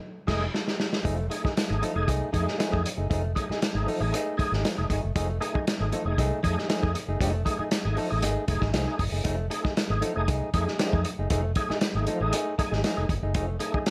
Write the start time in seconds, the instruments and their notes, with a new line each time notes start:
0.27 fingered electric bass F1, tonewheel organ A3 D#4 G#4, hollow-body jazz guitar A3 D#4 G#4, kick, snare, crash
0.54 snare
0.68 snare
0.80 snare
0.93 snare
1.04 fingered electric bass F1, tonewheel organ F3, hollow-body jazz guitar A3 D#4 G#4, kick, closed hi-hat
1.18 muted hollow-body jazz guitar stroke
1.30 tonewheel organ A3 D#4 G#4, muted hollow-body jazz guitar stroke, closed hi-hat
1.44 hollow-body jazz guitar A3 D#4 G#4, tonewheel organ D#4 G#4, muted fingered electric bass stroke, kick, snare
1.56 muted hollow-body jazz guitar stroke, snare, closed hi-hat
1.69 fingered electric bass G#1, tonewheel organ A3 D#4 G#4, muted hollow-body jazz guitar stroke
1.82 tonewheel organ F3, hollow-body jazz guitar A3 D#4 A4, closed hi-hat
1.95 fingered electric bass F1, tonewheel organ A3 D#4 G#4, muted hollow-body jazz guitar stroke
2.08 fingered electric bass C2, hollow-body jazz guitar A3 D#4 G#4, kick, closed hi-hat
2.32 fingered electric bass F2, tonewheel organ A3 D#4 G#4, kick, closed hi-hat
2.47 hollow-body jazz guitar A3 D#4 G#4, snare
2.58 tonewheel organ F3, hollow-body jazz guitar A3 D#4 G#4, snare, closed hi-hat
2.72 fingered electric bass F2, tonewheel organ A3 D#4 G#4, kick
2.84 tonewheel organ D#4 G#4, muted hollow-body jazz guitar stroke, closed hi-hat
2.97 fingered electric bass F#1, hollow-body jazz guitar A3 D#4 G#4
3.10 fingered electric bass F1, tonewheel organ F3, hollow-body jazz guitar A3 D#4 G#4, kick, closed hi-hat
3.24 muted hollow-body jazz guitar stroke
3.35 tonewheel organ A3 D#4 G#4, muted hollow-body jazz guitar stroke, kick, closed hi-hat
3.49 hollow-body jazz guitar A3 D#4 G#4, tonewheel organ D#4 G#4, muted fingered electric bass stroke, snare
3.62 muted hollow-body jazz guitar stroke, snare, closed hi-hat
3.74 fingered electric bass G#1, tonewheel organ A3 D#4 G#4, muted hollow-body jazz guitar stroke
3.87 tonewheel organ F3, hollow-body jazz guitar A3 D#4 A4, open hi-hat
4.00 fingered electric bass A1, tonewheel organ A3 D#4 G#4, muted hollow-body jazz guitar stroke
4.14 hollow-body jazz guitar A3 D#4 G#4, closed hi-hat
4.37 tonewheel organ A3 D#4 G#4, muted fingered electric bass stroke, kick, closed hi-hat
4.52 fingered electric bass G#1, hollow-body jazz guitar A3 D#4 G#4, snare
4.63 tonewheel organ F3, snare, closed hi-hat
4.78 fingered electric bass F1, tonewheel organ A3 D#4 G#4, muted hollow-body jazz guitar stroke
4.89 fingered electric bass G1, hollow-body jazz guitar A3 D#4 G#4, tonewheel organ D#4 G#4, kick, closed hi-hat
5.03 fingered electric bass F#1, muted hollow-body jazz guitar stroke
5.16 tonewheel organ F3, hollow-body jazz guitar A3 D#4 G#4, kick, closed hi-hat
5.30 muted hollow-body jazz guitar stroke
5.40 tonewheel organ A3 D#4 G#4, muted hollow-body jazz guitar stroke, closed hi-hat
5.54 hollow-body jazz guitar A3 D#4 G#4, tonewheel organ D#4 G#4, muted fingered electric bass stroke, kick
5.67 snare, closed hi-hat
5.80 fingered electric bass G#1, tonewheel organ A3 D#4 G#4, muted hollow-body jazz guitar stroke
5.92 tonewheel organ F3, hollow-body jazz guitar A3 D#4 A4, closed hi-hat
6.05 fingered electric bass F1, tonewheel organ A3 D#4 G#4, muted hollow-body jazz guitar stroke
6.18 fingered electric bass C2, hollow-body jazz guitar A3 D#4 G#4, kick, closed hi-hat
6.43 fingered electric bass F2, tonewheel organ A3 D#4 G#4, kick, closed hi-hat
6.58 hollow-body jazz guitar A3 D#4 G#4, snare
6.68 tonewheel organ F3, hollow-body jazz guitar A3 D#4 G#4, snare, closed hi-hat
6.82 fingered electric bass F2, tonewheel organ A3 D#4 G#4, kick
6.94 tonewheel organ D#4 G#4, muted hollow-body jazz guitar stroke, closed hi-hat
7.08 fingered electric bass F#1, hollow-body jazz guitar A3 D#4 G#4
7.19 fingered electric bass F1, tonewheel organ F3, hollow-body jazz guitar A3 D#4 G#4, kick, closed hi-hat
7.35 muted hollow-body jazz guitar stroke
7.45 tonewheel organ A3 D#4 G#4, muted hollow-body jazz guitar stroke, kick, closed hi-hat
7.59 hollow-body jazz guitar A3 D#4 G#4, tonewheel organ D#4 G#4, muted fingered electric bass stroke
7.71 snare, closed hi-hat
7.84 fingered electric bass G#1, tonewheel organ A3 D#4 G#4, muted hollow-body jazz guitar stroke
7.96 tonewheel organ F3, hollow-body jazz guitar A3 D#4 A4, open hi-hat
8.10 fingered electric bass A1, tonewheel organ A3 D#4 G#4, muted hollow-body jazz guitar stroke
8.22 fingered electric bass G#1, hollow-body jazz guitar A3 D#4 G#4, closed hi-hat
8.48 fingered electric bass F1, tonewheel organ A3 D#4 G#4, kick, closed hi-hat
8.61 fingered electric bass G#1, hollow-body jazz guitar A3 D#4 G#4, kick, snare
8.73 fingered electric bass C2, tonewheel organ F3, hollow-body jazz guitar A3 D#4 G#4, snare, closed hi-hat
8.87 tonewheel organ A3 D#4 G#4
8.99 fingered electric bass G1, tonewheel organ D#4 G#4, muted hollow-body jazz guitar stroke, kick, open hi-hat
9.12 fingered electric bass F#1, hollow-body jazz guitar A3 D#4 G#4
9.24 fingered electric bass F1, tonewheel organ F3, hollow-body jazz guitar A3 D#4 G#4, kick, closed hi-hat
9.38 muted hollow-body jazz guitar stroke
9.50 tonewheel organ A3 D#4 G#4, muted hollow-body jazz guitar stroke, closed hi-hat
9.63 hollow-body jazz guitar A3 D#4 G#4, tonewheel organ D#4 G#4, muted fingered electric bass stroke, kick, snare
9.76 muted hollow-body jazz guitar stroke, snare, closed hi-hat
9.90 fingered electric bass G#1, tonewheel organ A3 D#4 G#4, muted hollow-body jazz guitar stroke
10.01 tonewheel organ F3, hollow-body jazz guitar A3 D#4 A4, closed hi-hat
10.16 fingered electric bass F1, tonewheel organ A3 D#4 G#4, muted hollow-body jazz guitar stroke
10.28 fingered electric bass C2, hollow-body jazz guitar A3 D#4 G#4, kick, closed hi-hat
10.54 fingered electric bass F2, tonewheel organ A3 D#4 G#4, muted hollow-body jazz guitar stroke, kick, closed hi-hat
10.67 hollow-body jazz guitar A3 D#4 G#4, snare
10.78 tonewheel organ F3, hollow-body jazz guitar A3 D#4 G#4, snare, closed hi-hat
10.93 fingered electric bass F2, tonewheel organ A3 D#4 G#4, kick
11.05 tonewheel organ D#4 G#4, muted hollow-body jazz guitar stroke, closed hi-hat
11.19 fingered electric bass F#1, hollow-body jazz guitar A3 D#4 G#4
11.30 fingered electric bass F1, tonewheel organ F3, hollow-body jazz guitar A3 D#4 G#4, kick, closed hi-hat
11.44 muted hollow-body jazz guitar stroke
11.55 tonewheel organ A3 D#4 G#4, muted hollow-body jazz guitar stroke, kick, closed hi-hat
11.70 hollow-body jazz guitar A3 D#4 G#4, tonewheel organ D#4 G#4, muted fingered electric bass stroke, snare
11.81 snare, closed hi-hat
11.95 fingered electric bass G#1, tonewheel organ A3 D#4 G#4, muted hollow-body jazz guitar stroke
12.07 tonewheel organ F3, hollow-body jazz guitar A3 D#4 A4, closed hi-hat
12.21 fingered electric bass A1, tonewheel organ A3 D#4 G#4, muted hollow-body jazz guitar stroke
12.33 hollow-body jazz guitar A3 D#4 G#4, closed hi-hat
12.58 tonewheel organ A3 D#4 G#4, muted fingered electric bass stroke, muted hollow-body jazz guitar stroke, kick, closed hi-hat
12.71 fingered electric bass G#1, hollow-body jazz guitar A3 D#4 G#4, snare
12.84 tonewheel organ F3, hollow-body jazz guitar A3 D#4 G#4, snare, closed hi-hat
12.96 fingered electric bass F1, tonewheel organ A3 D#4 G#4
13.09 fingered electric bass G1, tonewheel organ D#4 G#4, muted hollow-body jazz guitar stroke, kick, closed hi-hat
13.23 fingered electric bass F#1, hollow-body jazz guitar A3 D#4 G#4
13.34 fingered electric bass F1, tonewheel organ F3, hollow-body jazz guitar A3 D#4 G#4, kick, closed hi-hat
13.48 muted hollow-body jazz guitar stroke
13.60 tonewheel organ A3 D#4 G#4, muted hollow-body jazz guitar stroke, closed hi-hat
13.74 hollow-body jazz guitar A3 D#4 G#4, tonewheel organ D#4 G#4, muted fingered electric bass stroke, kick
13.86 muted hollow-body jazz guitar stroke, snare, closed hi-hat